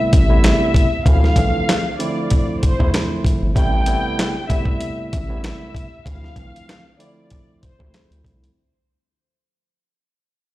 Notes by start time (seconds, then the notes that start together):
Already playing: C3 G3 A3 B3 E4
0.13 A1 E5, kick, closed hi-hat
0.29 C3 G3 A3 B3 E4
0.44 snare, clap, closed hi-hat
0.74 kick, closed hi-hat
1.06 D2 D3 F3 A3 C4 E4 F5, kick, closed hi-hat
1.24 snare
1.36 C2 D3 E3 F3 A3 C4, kick, closed hi-hat
1.69 snare, clap, closed hi-hat
1.99 D3 F3 A3 C4 E4 D5, closed hi-hat
2.30 kick, closed hi-hat
2.61 C5, kick, closed hi-hat
2.79 E2 D3 F3 A3 C4 E4, kick
2.94 snare, clap, closed hi-hat
3.25 kick, closed hi-hat
3.42 G1
3.55 A1 C3 G3 A3 B3 E4 G5, kick, closed hi-hat
3.86 C3 G3 A3 B3 E4, closed hi-hat
4.19 snare, clap, closed hi-hat
4.48 C3 G3 A3 B3 E4 E5, kick, closed hi-hat
4.65 kick
4.81 closed hi-hat
5.11 A1 E5, kick, closed hi-hat
5.29 C3 G3 A3 B3 E4
5.44 snare, clap, closed hi-hat
5.75 kick, closed hi-hat
6.06 D2 D3 F3 A3 C4 E4 F5, kick, closed hi-hat
6.24 snare
6.36 C2 D3 E3 F3 A3 C4, kick, closed hi-hat
6.56 closed hi-hat
6.69 snare, clap, closed hi-hat
6.98 D3 F3 A3 C4 E4 D5, closed hi-hat
7.30 kick, closed hi-hat
7.63 C5, kick, closed hi-hat
7.79 D2 D3 F3 A3 C4 E4, kick
7.94 snare, clap, closed hi-hat
8.11 D2, closed hi-hat
8.25 C2, kick, closed hi-hat
8.44 closed hi-hat